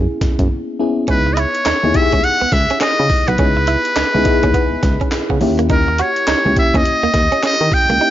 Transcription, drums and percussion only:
0.21 kick, snare, closed hi-hat
0.39 kick, closed hi-hat
1.08 kick, closed hi-hat
1.37 closed hi-hat
1.55 closed hi-hat
1.65 snare, clap, closed hi-hat
1.94 kick, closed hi-hat
2.12 kick, closed hi-hat
2.24 closed hi-hat
2.52 kick, snare, closed hi-hat
2.70 closed hi-hat
2.81 snare, clap, closed hi-hat
3.09 kick, open hi-hat
3.28 closed hi-hat
3.38 kick, closed hi-hat
3.67 closed hi-hat
3.85 closed hi-hat
3.96 snare, clap, closed hi-hat
4.25 kick, closed hi-hat
4.43 kick, closed hi-hat
4.54 kick, closed hi-hat
4.83 kick, snare, closed hi-hat
5.01 kick, closed hi-hat
5.12 snare, clap, closed hi-hat
5.30 kick
5.41 open hi-hat
5.59 closed hi-hat
5.70 kick, closed hi-hat
5.99 closed hi-hat
6.16 closed hi-hat
6.27 snare, clap, closed hi-hat
6.56 kick, closed hi-hat
6.74 kick, closed hi-hat
6.85 closed hi-hat
7.14 kick, snare, closed hi-hat
7.32 closed hi-hat
7.43 snare, clap, closed hi-hat
7.72 kick, open hi-hat
7.90 closed hi-hat

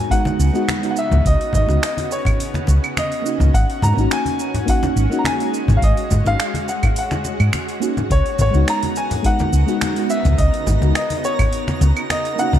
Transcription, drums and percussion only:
0.11 kick, open hi-hat, shaker
0.25 muted conga, high conga, shaker
0.40 shaker
0.55 shaker
0.68 finger snap, open hi-hat, high conga, shaker
0.83 open hi-hat, shaker
0.96 shaker
1.11 high conga, low conga, shaker
1.25 kick, open hi-hat, shaker
1.41 open hi-hat
1.53 kick, high conga, shaker
1.69 muted conga, shaker
1.83 finger snap, open hi-hat, shaker
1.97 open hi-hat, high conga, shaker
2.11 shaker
2.25 kick, open hi-hat, low conga, claves, shaker
2.40 open hi-hat, shaker
2.54 finger snap, high conga, shaker
2.67 muted conga, shaker
2.84 claves, shaker
2.97 finger snap, open hi-hat, high conga, shaker
3.12 open hi-hat, shaker
3.26 shaker
3.40 high conga, low conga, shaker
3.54 kick, open hi-hat, shaker
3.70 open hi-hat
3.82 high conga, shaker
3.98 shaker
4.11 finger snap, open hi-hat, shaker
4.26 open hi-hat, high conga, shaker
4.39 shaker
4.54 open hi-hat, low conga, shaker
4.68 kick, open hi-hat, shaker
4.83 muted conga, high conga, shaker
4.97 shaker
5.12 shaker
5.24 finger snap, open hi-hat, high conga, shaker
5.40 open hi-hat, shaker
5.54 shaker
5.68 high conga, low conga, shaker
5.82 kick, open hi-hat, shaker
5.97 open hi-hat
6.11 kick, high conga, shaker
6.26 muted conga, shaker
6.40 finger snap, open hi-hat, shaker
6.54 open hi-hat, high conga, shaker
6.68 shaker
6.83 kick, open hi-hat, low conga, claves, shaker
6.96 open hi-hat, shaker
7.11 finger snap, high conga, shaker
7.25 muted conga, shaker
7.40 claves, shaker
7.53 finger snap, open hi-hat, high conga, shaker
7.68 open hi-hat, shaker
7.82 shaker
7.97 high conga, low conga, shaker
8.11 kick, open hi-hat, shaker
8.26 open hi-hat
8.39 high conga, shaker
8.54 shaker
8.68 finger snap, open hi-hat, shaker
8.83 open hi-hat, high conga, shaker
8.96 shaker
9.11 open hi-hat, low conga, shaker
9.24 kick, open hi-hat, shaker
9.39 muted conga, high conga, shaker
9.53 shaker
9.68 shaker
9.81 finger snap, open hi-hat, high conga, shaker
9.96 open hi-hat, shaker
10.10 shaker
10.25 high conga, low conga, shaker
10.38 kick, open hi-hat, shaker
10.54 open hi-hat
10.67 kick, high conga, shaker
10.82 muted conga, shaker
10.95 finger snap, open hi-hat, shaker
11.10 open hi-hat, high conga, shaker
11.24 shaker
11.39 kick, open hi-hat, low conga, claves, shaker
11.53 open hi-hat, shaker
11.68 finger snap, high conga, shaker
11.81 muted conga, shaker
11.97 claves, shaker
12.10 finger snap, open hi-hat, high conga, shaker
12.25 open hi-hat, shaker
12.39 shaker
12.53 high conga, low conga, shaker

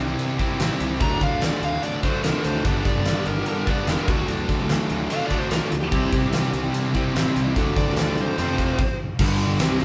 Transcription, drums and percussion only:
0.19 closed hi-hat
0.39 kick, closed hi-hat
0.60 snare, closed hi-hat
0.80 closed hi-hat
1.00 kick, closed hi-hat
1.21 kick, closed hi-hat
1.41 snare, closed hi-hat
1.63 closed hi-hat
1.83 closed hi-hat
2.03 kick, closed hi-hat
2.24 snare, closed hi-hat
2.44 closed hi-hat
2.65 kick, closed hi-hat
2.85 kick, closed hi-hat
3.05 snare, closed hi-hat
3.26 closed hi-hat
3.46 closed hi-hat
3.67 kick, closed hi-hat
3.87 snare, closed hi-hat
4.08 kick, closed hi-hat
4.28 closed hi-hat
4.49 kick, closed hi-hat
4.69 snare, closed hi-hat
4.90 closed hi-hat
5.10 closed hi-hat
5.30 kick, closed hi-hat
5.51 snare, closed hi-hat
5.72 closed hi-hat
5.92 kick, closed hi-hat
6.13 kick, closed hi-hat
6.33 snare, closed hi-hat
6.54 closed hi-hat
6.74 closed hi-hat
6.95 kick, closed hi-hat
7.16 snare, closed hi-hat
7.36 closed hi-hat
7.56 kick, closed hi-hat
7.76 kick, closed hi-hat
7.97 snare, closed hi-hat
8.17 closed hi-hat
8.38 closed hi-hat
8.58 kick, closed hi-hat
8.79 kick, crash
9.19 kick, crash
9.39 open hi-hat
9.59 snare, open hi-hat
9.80 open hi-hat

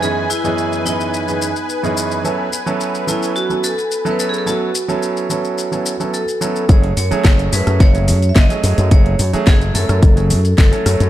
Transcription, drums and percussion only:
0.03 shaker
0.30 shaker
0.45 shaker
0.58 shaker
0.73 shaker
0.86 shaker
1.00 shaker
1.14 shaker
1.28 shaker
1.42 shaker
1.56 shaker
1.70 shaker
1.84 shaker
1.97 shaker
2.11 shaker
2.25 shaker
2.53 shaker
2.67 shaker
2.81 shaker
2.95 shaker
3.08 shaker
3.23 shaker
3.36 shaker
3.50 shaker
3.64 shaker
3.78 shaker
3.91 shaker
4.06 shaker
4.19 shaker
4.34 shaker
4.47 shaker
4.75 shaker
4.89 shaker
5.03 shaker
5.17 shaker
5.30 shaker
5.45 shaker
5.58 shaker
5.72 shaker
5.86 shaker
6.00 shaker
6.14 shaker
6.28 shaker
6.42 shaker
6.56 shaker
6.69 kick, closed hi-hat, shaker
6.84 closed hi-hat
6.97 open hi-hat, shaker
7.12 closed hi-hat, shaker
7.24 kick, snare, closed hi-hat, shaker
7.39 closed hi-hat, shaker
7.53 open hi-hat, shaker
7.67 cross-stick, closed hi-hat, shaker
7.80 kick, snare, closed hi-hat, shaker
7.95 closed hi-hat, shaker
8.08 open hi-hat, shaker
8.22 closed hi-hat, shaker
8.36 kick, snare, closed hi-hat, shaker
8.50 closed hi-hat, shaker
8.64 open hi-hat, shaker
8.78 closed hi-hat, shaker
8.91 kick, closed hi-hat, shaker
9.06 closed hi-hat
9.19 open hi-hat, shaker
9.34 closed hi-hat, shaker
9.47 kick, snare, closed hi-hat, shaker
9.61 closed hi-hat, shaker
9.75 open hi-hat, shaker
9.89 cross-stick, closed hi-hat, shaker
10.03 kick, closed hi-hat, shaker
10.17 closed hi-hat, shaker
10.30 open hi-hat, shaker
10.45 closed hi-hat, shaker
10.58 kick, snare, closed hi-hat, shaker
10.73 closed hi-hat, shaker
10.86 cross-stick, open hi-hat, shaker
11.00 closed hi-hat, shaker

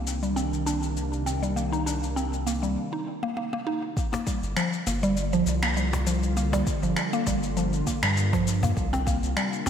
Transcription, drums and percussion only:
0.07 shaker
0.23 shaker
0.37 shaker
0.53 shaker
0.67 shaker
0.83 shaker
0.97 shaker
1.13 shaker
1.27 shaker
1.43 shaker
1.57 shaker
1.73 shaker
1.87 shaker
2.03 shaker
2.17 shaker
2.33 shaker
2.47 shaker
2.63 shaker
3.97 kick, shaker
4.13 cajon slap, shaker
4.27 kick, shaker
4.43 shaker
4.57 finger snap, shaker
4.73 shaker
4.87 cajon slap, shaker
5.03 shaker
5.17 shaker
5.33 shaker
5.47 shaker
5.63 finger snap, shaker
5.77 shaker
5.93 cajon slap, shaker
6.07 shaker
6.23 shaker
6.37 shaker
6.53 cajon slap, shaker
6.67 kick, shaker
6.83 shaker
6.96 finger snap, shaker
7.13 shaker
7.27 kick, cajon slap, shaker
7.43 shaker
7.57 shaker
7.73 shaker
7.87 kick, shaker
8.03 finger snap, shaker
8.17 shaker
8.33 kick, cajon slap, shaker
8.47 shaker
8.63 cajon bass, cajon slap, shaker
8.77 kick, shaker
8.93 cajon slap, shaker
9.07 kick, shaker
9.23 shaker
9.37 finger snap, shaker
9.53 shaker
9.66 cajon slap

